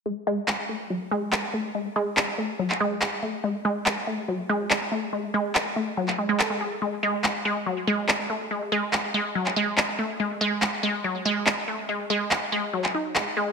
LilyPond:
<<
  \new Staff \with { instrumentName = "Synth arpeggio sound" } { \clef bass \time 4/4 \tempo 4 = 142 gis16 r16 gis16 r16 gis16 r16 a16 r16 fis16 r16 gis16 r16 gis16 r16 a16 r16 | gis16 r16 gis16 r16 gis16 r16 a16 r16 fis16 r16 gis16 r16 gis16 r16 a16 r16 | gis16 r16 gis16 r16 gis16 r16 a16 r16 fis16 r16 gis16 r16 gis16 r16 a16 r16 | gis16 r16 gis16 r16 gis16 r16 a16 r16 fis16 r16 gis16 gis16 a'16 gis16 gis'16 r16 |
gis16 r16 gis16 r16 gis16 r16 gis16 r16 fis16 r16 gis16 r16 gis16 r16 a16 r16 | gis16 r16 gis16 r16 gis16 r16 gis16 r16 fis16 r16 gis16 r16 gis16 r16 a16 r16 | gis16 r16 gis16 r16 gis16 r16 gis16 r16 fis16 r16 gis16 r16 gis16 r16 a16 r16 | gis16 r16 gis16 r16 gis16 r16 gis16 r16 fis16 r16 dis'16 r16 gis16 r16 gis16 r16 | }
  \new DrumStaff \with { instrumentName = "Drums" } \drummode { \time 4/4 r4 hc4 r4 hc4 | r4 hc4 r16 hc8. hc4 | r4 hc4 r4 hc4 | r4 hc4 r16 hc8. hc4 |
r4 hc4 r4 hc4 | r4 hc4 r16 hc8. hc4 | r4 hc4 r4 hc4 | r4 hc4 r16 hc8. hc4 | }
>>